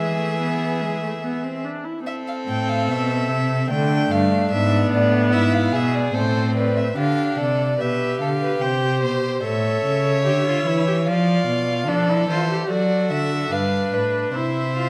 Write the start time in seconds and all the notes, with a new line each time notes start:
Already playing: E3 G#3 G#4 E5
0.19 A3
0.40 B3
0.82 G#3
1.02 A3
1.23 B3
1.44 C4
1.65 D4
1.84 E4
2.05 C4 A4 E5
2.27 F5
2.47 A2 G5
2.69 F5
2.88 B2 E5
3.29 C3
3.70 D3 A3 D4 G5
4.11 G2 F5
4.51 G#2 B3 E5
4.92 A2 D5
5.32 G#2 E4 E5
5.53 F5
5.73 B2 G#4 E5
5.95 D5
6.14 A2 C4 A4 C5
6.56 B4 D5
6.77 E5
6.97 D3 D4 G4 F5
7.38 C3 A4 D5
7.79 B2 G4 B4 E5
8.20 D3 A4 F5
8.41 B4
8.62 C3 C5 G5
9.03 B2 C5
9.44 A2 A4 C#5 E5
9.85 C#3
10.25 D3 G4 E5
10.46 F4
10.66 E3 E4
10.87 G4
11.07 F3 F4 D5 F5
11.48 B2
11.88 F3 D4 A4 D5
12.09 E4
12.29 E3 F4 C5
12.50 G4
12.69 F#3 F#4 A4 D5
13.11 D3 E5
13.51 G2 D4 B4 F5
13.93 A2 B4
14.34 C3 E4 C5 E5
14.76 F4